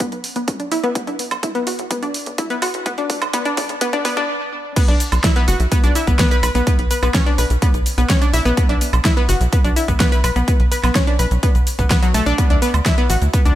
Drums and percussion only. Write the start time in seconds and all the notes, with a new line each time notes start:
0.00 kick, closed hi-hat
0.12 closed hi-hat
0.24 open hi-hat
0.36 closed hi-hat
0.48 kick, closed hi-hat
0.60 closed hi-hat
0.72 open hi-hat
0.84 closed hi-hat
0.95 kick, closed hi-hat
1.07 closed hi-hat
1.19 open hi-hat
1.31 closed hi-hat, high woodblock
1.43 kick, closed hi-hat
1.55 closed hi-hat
1.67 open hi-hat
1.79 closed hi-hat
1.91 kick, closed hi-hat
2.03 closed hi-hat
2.14 open hi-hat
2.26 closed hi-hat
2.38 kick, closed hi-hat
2.50 closed hi-hat
2.62 open hi-hat, high woodblock
2.74 closed hi-hat
2.86 kick, closed hi-hat
2.98 closed hi-hat
3.10 kick, open hi-hat
3.22 closed hi-hat, high woodblock
3.33 kick, closed hi-hat
3.45 closed hi-hat
3.57 kick, open hi-hat
3.69 closed hi-hat
3.81 kick, closed hi-hat
3.93 kick, closed hi-hat
4.05 kick, open hi-hat
4.17 kick, closed hi-hat
4.76 kick, closed hi-hat, crash, shaker
4.88 closed hi-hat
5.00 open hi-hat, shaker
5.12 closed hi-hat, high woodblock, shaker
5.24 kick, snare, closed hi-hat, shaker
5.36 closed hi-hat
5.48 open hi-hat, shaker
5.60 closed hi-hat, shaker
5.72 kick, closed hi-hat, shaker
5.84 closed hi-hat, shaker
5.95 open hi-hat, shaker
6.07 kick, closed hi-hat, shaker
6.19 kick, snare, closed hi-hat, shaker
6.31 closed hi-hat, shaker
6.43 open hi-hat, high woodblock, shaker
6.55 closed hi-hat, shaker
6.67 kick, closed hi-hat, shaker
6.79 closed hi-hat
6.91 open hi-hat, shaker
7.03 closed hi-hat, high woodblock, shaker
7.14 kick, snare, closed hi-hat, shaker
7.26 closed hi-hat
7.38 open hi-hat, shaker
7.50 closed hi-hat, shaker
7.62 kick, closed hi-hat, shaker
7.74 closed hi-hat, shaker
7.86 open hi-hat, shaker
7.98 closed hi-hat, shaker
8.10 kick, snare, closed hi-hat, shaker
8.22 closed hi-hat, shaker
8.34 open hi-hat, shaker
8.46 closed hi-hat, shaker
8.57 kick, closed hi-hat, shaker
8.69 closed hi-hat
8.81 open hi-hat, shaker
8.93 closed hi-hat, high woodblock, shaker
9.05 kick, snare, closed hi-hat, shaker
9.17 closed hi-hat
9.29 open hi-hat, shaker
9.41 closed hi-hat, shaker
9.53 kick, closed hi-hat, shaker
9.65 closed hi-hat, shaker
9.76 open hi-hat, shaker
9.88 kick, closed hi-hat, shaker
10.00 kick, snare, closed hi-hat, shaker
10.12 closed hi-hat, shaker
10.24 open hi-hat, high woodblock, shaker
10.36 closed hi-hat, shaker
10.48 kick, closed hi-hat, shaker
10.60 closed hi-hat
10.72 open hi-hat, shaker
10.83 snare, closed hi-hat, high woodblock, shaker
10.95 kick, snare, closed hi-hat, shaker
11.07 closed hi-hat
11.19 open hi-hat, shaker
11.31 closed hi-hat, shaker
11.43 kick, closed hi-hat, shaker
11.55 closed hi-hat, shaker
11.67 open hi-hat, shaker
11.79 kick, closed hi-hat, shaker
11.90 kick, snare, closed hi-hat, shaker
12.03 closed hi-hat, shaker
12.14 open hi-hat, shaker
12.26 closed hi-hat, shaker
12.38 kick, closed hi-hat, shaker
12.50 closed hi-hat
12.62 open hi-hat, shaker
12.74 closed hi-hat, high woodblock, shaker
12.86 kick, snare, closed hi-hat, shaker
12.98 closed hi-hat
13.10 open hi-hat, shaker
13.22 closed hi-hat, shaker
13.33 kick, closed hi-hat, shaker
13.45 closed hi-hat, shaker